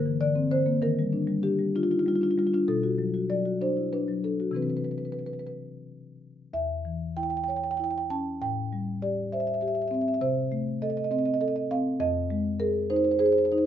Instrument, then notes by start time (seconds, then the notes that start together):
marimba
Already playing: G2 D3 A#4
0.06 E3
0.21 D3 D5
0.35 C4
0.51 D3 C5
0.66 A#3
0.82 D#3 A#4
0.99 G3
1.13 D4
1.27 G3
1.43 D4 G4
1.59 G3
1.75 D4 F4
1.83 F4
1.91 D#4 F4
1.99 F4
2.06 G3 F4
2.15 F4
2.21 D4 F4
2.31 F4
2.38 G3 F4
2.47 F4
2.53 D4 F4
2.68 B2 A4
2.83 F#4
2.98 F#3
3.14 F#4
3.30 F#3 D5
3.46 F#4
3.61 D4 C5
3.77 E4
3.93 D4 B4
4.08 F#3
4.24 D4 A4
4.40 F#4
4.51 C3 E3 C4
4.56 B4
4.62 B4
4.70 B4
4.77 B4
4.84 B4
4.91 B4
4.98 B4
5.05 B4
5.12 B4
5.19 B4
5.26 B4
5.33 B4
5.39 B4
5.47 B4
6.53 E2 E5
6.85 E3
7.17 E4 G5
7.23 G5
7.30 G5
7.37 G5
7.44 G5
7.48 C#5 G5
7.56 G5
7.64 G5
7.71 G5
7.77 E4 G5
7.84 G5
7.91 G5
7.98 G5
8.10 C#4 A5
8.42 A2 G5
8.73 G3
9.02 G4 D5
9.32 C5 E5
9.40 E5
9.47 E5
9.54 E5
9.61 G4 E5
9.68 E5
9.75 E5
9.82 E5
9.88 C4 E5
9.94 E5
10.01 E5
10.08 E5
10.14 E5
10.21 C3 C5
10.52 A3
10.82 A4 D#5
10.90 D#5
10.97 D#5
11.04 D#5
11.11 C4 D#5
11.19 D#5
11.25 D#5
11.34 D#5
11.41 A4 D#5
11.48 D#5
11.56 D#5
11.71 C4 F5
12.00 F2 D#5
12.30 G#3
12.60 G#4 A#4
12.90 D#4 C5
12.96 C5
13.04 C5
13.11 C5
13.19 G#4 C5
13.26 C5
13.32 C5
13.38 C5
13.45 C5
13.52 D#4 C5
13.58 C5